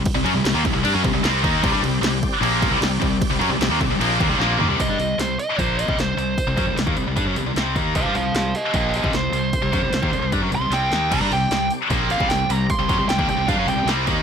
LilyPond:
<<
  \new Staff \with { instrumentName = "Lead electric guitar" } { \time 4/4 \key c \minor \tempo 4 = 152 r1 | r1 | r1 | ees''4 c''8 ees''8 c''8 ees''8 c''4~ |
c''4 r2. | <c'' f''>8 <c'' f''>8 <c'' f''>8 <g' ees''>8 <g' ees''>8 <g' ees''>8 c''4~ | c''2 r8 c'''8 g''4 | bes''8 g''4 r4 f''8 g''8 bes''8 |
c'''4 g''8 g''8 f''8 g''8 r4 | }
  \new Staff \with { instrumentName = "Tonewheel organ" } { \time 4/4 \key c \minor r1 | <c' g' d''>1~ | <c' g' d''>1 | r1 |
r1 | r1 | r1 | <c' g' d''>1~ |
<c' g' d''>1 | }
  \new Staff \with { instrumentName = "Distorted electric guitar" } { \clef bass \time 4/4 \key c \minor r16 <c g>16 <fis des'>16 <c g>16 <c g>16 <ees bes>16 <c g>16 <c g>16 <g d'>16 <fis des'>16 <c g>16 <c g>16 <c g c'>8 <ees bes ees'>8 | <c g>16 <g d'>16 <c g>8 <c g>8 r8 <bes, f bes>8. <c g>16 <c g>8 <c g>8 | r16 <c g>16 <fis des'>16 <c g>16 <c g>16 <ees bes>16 <c g>16 <c g>16 <bes, f bes>8 <ees bes>16 <c g>16 <bes, f bes>8 <ees bes>16 <c g>16 | <c g>16 <g d'>16 <c g>8 <c g>8 r8 <bes, f bes>8. <c g>16 <c g>8 <c g>8 |
r16 <c g>16 <fis des'>16 <c g>16 <c g>16 <ees bes>16 <c g>16 <c g>16 <g d'>16 <fis des'>16 <c g>16 <c g>16 <c g c'>8 <ees bes ees'>8 | <c g>16 <g d'>16 <c g>8 <c g>8 r8 <bes, f bes>8. <c g>16 <c g>8 <c g>8 | r16 <c g>16 <fis des'>16 <c g>16 <c g>16 <ees bes>16 <c g>16 <c g>16 <g d'>16 <fis des'>16 <c g>16 <c g>16 <c g c'>8 <ees bes ees'>8 | <c g>16 <g d'>16 <c g>8 <c g>8 r8 <bes, f bes>8. <c g>16 <c g>8 <c g>8 |
r16 <c g>16 <fis des'>16 <c g>16 <c g>16 <ees bes>16 <c g>16 <c g>16 <g d'>16 <fis des'>16 <c g>16 <c g>16 <c g c'>8 <ees bes ees'>8 | }
  \new Staff \with { instrumentName = "Distorted electric guitar" } { \clef bass \time 4/4 \key c \minor r16 <c g>16 <fis des'>16 <c g>16 <c g>16 <ees bes>16 <c g>16 <c g>16 <g d'>16 <fis des'>16 <c g>16 <c g>16 <c g c'>8 <ees bes ees'>8 | <c g>16 <g d'>16 <c g>8 <c g>8 r8 <bes, f bes>8. <c g>16 <c g>8 <c g>8 | r16 <c g>16 <fis des'>16 <c g>16 <c g>16 <ees bes>16 <c g>16 <c g>16 <bes, f bes>8 <ees bes>16 <c g>16 <bes, f bes>8 <ees bes>16 <c g>16 | r1 |
r1 | r1 | r1 | <c g>16 <g d'>16 <c g>8 <c g>8 r8 <bes, f bes>8. <c g>16 <c g>8 <c g>8 |
r16 <c g>16 <fis des'>16 <c g>16 <c g>16 <ees bes>16 <c g>16 <c g>16 <g d'>16 <fis des'>16 <c g>16 <c g>16 <c g c'>8 <ees bes ees'>8 | }
  \new Staff \with { instrumentName = "Fingered electric bass" } { \clef bass \time 4/4 \key c \minor r16 c,16 fis,16 c,16 c,16 ees,16 c,16 c,16 g,16 fis,16 c,16 c,16 c,8 ees,8 | c,16 g,16 c,8 c,8 r8 bes,,8. c,16 c,8 c,8 | r16 c,16 fis,16 c,16 c,16 ees,16 c,16 c,16 bes,,8 ees,16 c,16 bes,,8 ees,16 c,16 | c,16 g,16 c,8 c,8 r8 bes,,8. c,16 c,8 c,8 |
r16 c,16 fis,16 c,16 c,16 ees,16 c,16 c,16 g,16 fis,16 c,16 c,16 c,8 ees,8 | c,16 g,16 c,8 c,8 r8 bes,,8. c,16 c,8 c,8 | r16 c,16 fis,16 c,16 c,16 ees,16 c,16 c,16 g,16 fis,16 c,16 c,16 c,8 ees,8 | c,16 g,16 c,8 c,8 r8 bes,,8. c,16 c,8 c,8 |
r16 c,16 fis,16 c,16 c,16 ees,16 c,16 c,16 g,16 fis,16 c,16 c,16 c,8 ees,8 | }
  \new DrumStaff \with { instrumentName = "Drums" } \drummode { \time 4/4 <cymc bd>8 cymc8 <cymc sn>8 <cymc bd>8 cymc8 <cymc bd>8 <cymc sn>8 <cymc bd>8 | <cymc bd>8 cymc8 <cymc sn>8 <cymc bd>8 cymc8 <cymc bd>8 <cymc sn>8 <cymc bd>8 | <cymc bd>8 cymc8 <cymc sn>8 <cymc bd>8 cymc8 <cymc bd>8 sn8 tomfh8 | <hho bd>8 hho8 <hho sn>8 hho8 <hho bd>8 hho16 bd16 <hho sn>8 hho8 |
<hho bd>8 <hho bd>8 <hho sn>16 bd16 hho8 <hho bd>8 hho8 <hho sn>8 <hho bd>8 | <hho bd>8 hho8 <hho sn>8 hho8 <hho bd>8 hho16 bd16 <hho sn>8 hho8 | <hho bd>8 <hho bd>8 <hho sn>16 bd16 hho8 <hho bd>8 hho8 <hho sn>8 <hho sn>8 | <cymc hho bd>8 hho8 <hho sn>8 hho8 <hho bd>8 hho16 bd16 <hho sn>8 hho8 |
<hho bd>8 <hho bd>8 <hho sn>16 bd16 hho8 <hho bd>8 hho8 <hho sn>8 <hho bd>8 | }
>>